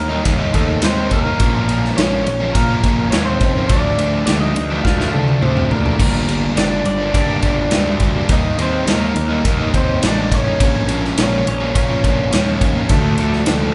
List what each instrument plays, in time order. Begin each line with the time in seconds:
Already playing: picked electric bass D#2, clean electric guitar A#3 A#4
0.09 distorted electric guitar G3 A#3 D#4
0.24 picked electric bass D#2, distorted electric guitar D#3 G3 A#3 D#4, kick, ride
0.38 distorted electric guitar G3 A#3 D#4
0.53 picked electric bass D#2, distorted electric guitar D#3 G3 A#3 D#4, clean electric guitar A3 A4, kick, ride
0.81 picked electric bass D#2, distorted electric guitar D#3 G3 A#3 D#4, clean electric guitar C4 C5, snare, ride
0.97 distorted electric guitar G3 A#3 D#4
1.10 overdriven electric guitar D#3 G3 A#3 D#4, clean electric guitar A#3 A#4, kick, ride
1.25 distorted electric guitar G3 A#3 D#4
1.40 picked electric bass A#1, distorted electric guitar A#2 F3 A#3 C#4, kick, ride
1.53 overdriven electric guitar F3 A#3 C#4
1.68 distorted electric guitar A#2 F3 A#3 C#4, ride
1.85 snare
1.97 picked electric bass A#1, distorted electric guitar A#2 F3 A#3 C#4, clean electric guitar C#4 C#5, snare, ride
2.12 distorted electric guitar F3 A#3 C#4
2.24 picked electric bass A#1, clean electric guitar C#4 C#5, muted overdriven electric guitar stroke, muted distorted electric guitar stroke, ride
2.41 distorted electric guitar F3 A#3 C#4
2.53 distorted electric guitar A#2 F3 A#3 C#4, picked electric bass A#2, clean electric guitar A#3 A#4, kick, ride
2.69 distorted electric guitar F3 A#3 C#4
2.83 picked electric bass A#1, distorted electric guitar A#2 F3 A#3 C#4, kick, ride
3.10 picked electric bass D#2, distorted electric guitar A#2 F3 A#3 C#4, clean electric guitar C#4 C#5, snare, ride
3.25 distorted electric guitar F3 A#3 C#4, clean electric guitar C4 C5
3.41 overdriven electric guitar A#2 F3 A#3 C#4, kick, ride
3.55 distorted electric guitar F3 A#3 C#4
3.68 picked electric bass D2, distorted electric guitar D3 F3 A3 D4, clean electric guitar D4 D5, kick, ride
3.84 overdriven electric guitar F3 A3 D4
3.98 picked electric bass D2, distorted electric guitar D3 F3 A3 D4, ride
4.26 picked electric bass D2, distorted electric guitar D3 F3 A3 D4, clean electric guitar D4 D5, snare, ride
4.41 distorted electric guitar F3 A3 D4, clean electric guitar D#4 D#5
4.56 picked electric bass D2, muted distorted electric guitar stroke, muted overdriven electric guitar stroke, ride
4.70 distorted electric guitar F3 A3 D4
4.83 picked electric bass D2, distorted electric guitar D3 F3 A3 D4, clean electric guitar F4 F5, kick, snare
4.98 distorted electric guitar F3 A3 D4, snare
5.12 picked electric bass D2, distorted electric guitar D3 F3 A3 D4, clean electric guitar A3 A4, high tom
5.28 high tom
5.41 picked electric bass D2, distorted electric guitar D3 F3 A3 D4, clean electric guitar C4 C5, mid tom
5.54 distorted electric guitar F3 A3 D4, mid tom
5.71 overdriven electric guitar D3 F3 A3 D4, clean electric guitar A#3 A#4, floor tom
5.83 distorted electric guitar F3 A3 D4, floor tom
5.98 picked electric bass G1, distorted electric guitar G2 D3 G3 A#3 D4, kick, crash
6.14 overdriven electric guitar G3 A#3 D4
6.26 distorted electric guitar D3 G3 A#3 D4, ride
6.55 picked electric bass G1, distorted electric guitar G2 D3 G3 A#3 D4, clean electric guitar D5, snare, ride
6.59 clean electric guitar D4
6.70 distorted electric guitar G3 A#3 D4
6.85 picked electric bass G1, clean electric guitar D4 D5, muted distorted electric guitar stroke, muted overdriven electric guitar stroke, ride
6.97 distorted electric guitar G3 A#3 D4
7.13 picked electric bass G2, distorted electric guitar D3 G3 A#3 D4, clean electric guitar D4 D5, kick, ride
7.27 distorted electric guitar G3 A#3 D4
7.42 picked electric bass G1, distorted electric guitar D3 G3 A#3 D4, kick, ride
7.70 picked electric bass D2, distorted electric guitar G2 D3 G3 A#3 D4, snare, ride
7.85 distorted electric guitar G3 A#3 D4
8.00 overdriven electric guitar D3 G3 A#3 D4, kick, ride
8.14 distorted electric guitar G3 A#3 D4
8.28 picked electric bass D#2, distorted electric guitar D#3 G3 A#3 D#4, clean electric guitar D#4, kick, ride
8.33 clean electric guitar D#5
8.44 overdriven electric guitar G3 A#3 D#4
8.56 picked electric bass D#2, distorted electric guitar D#3 G3 A#3 D#4, ride
8.61 clean electric guitar C4 C5
8.85 picked electric bass D#2, distorted electric guitar D#3 G3 A#3 D#4, snare, ride
8.90 clean electric guitar A#3 A#4
9.00 distorted electric guitar G3 A#3 D#4
9.16 picked electric bass D#2, muted distorted electric guitar stroke, muted overdriven electric guitar stroke, ride
9.29 distorted electric guitar G3 A#3 D#4
9.44 picked electric bass D#2, distorted electric guitar D#3 G3 A#3 D#4, kick, ride
9.59 distorted electric guitar G3 A#3 D#4
9.73 picked electric bass D#2, distorted electric guitar D#3 G3 A#3 D#4, clean electric guitar C4, kick, ride
9.77 clean electric guitar C5
10.01 picked electric bass A1, distorted electric guitar D#3 G3 A#3 D#4, clean electric guitar D4, snare, ride
10.06 clean electric guitar D5
10.17 distorted electric guitar G3 A#3 D#4
10.31 overdriven electric guitar D#3 G3 A#3 D#4, clean electric guitar C#4 C#5, kick, ride
10.45 distorted electric guitar G3 A#3 D#4
10.59 picked electric bass A#1, distorted electric guitar A#2 F3 A#3 C#4, kick, ride
10.74 overdriven electric guitar F3 A#3 C#4
10.88 distorted electric guitar A#2 F3 A#3 C#4, ride
11.05 snare
11.17 picked electric bass A#1, distorted electric guitar A#2 F3 A#3 C#4, clean electric guitar C#4 C#5, snare, ride
11.31 distorted electric guitar F3 A#3 C#4
11.46 picked electric bass A#1, clean electric guitar C#4 C#5, muted distorted electric guitar stroke, muted overdriven electric guitar stroke, ride
11.60 distorted electric guitar F3 A#3 C#4
11.74 distorted electric guitar A#2 F3 A#3 C#4, picked electric bass A#2, clean electric guitar C#4 C#5, kick, ride
11.89 distorted electric guitar F3 A#3 C#4
12.02 picked electric bass A#1, distorted electric guitar A#2 F3 A#3 C#4, kick, ride
12.31 picked electric bass D#2, distorted electric guitar A#2 F3 A#3 C#4, snare, ride
12.45 distorted electric guitar F3 A#3 C#4
12.60 overdriven electric guitar A#2 F3 A#3 C#4, kick, ride
12.74 distorted electric guitar F3 A#3 C#4
12.89 picked electric bass D2, distorted electric guitar D3 F3 A3 D4, clean electric guitar A3 A4, kick, ride
13.03 overdriven electric guitar F3 A3 D4
13.18 picked electric bass D2, distorted electric guitar D3 F3 A3 D4, clean electric guitar A3 A4, ride
13.33 snare
13.46 picked electric bass D2, distorted electric guitar D3 F3 A3 D4, snare, ride
13.61 distorted electric guitar F3 A3 D4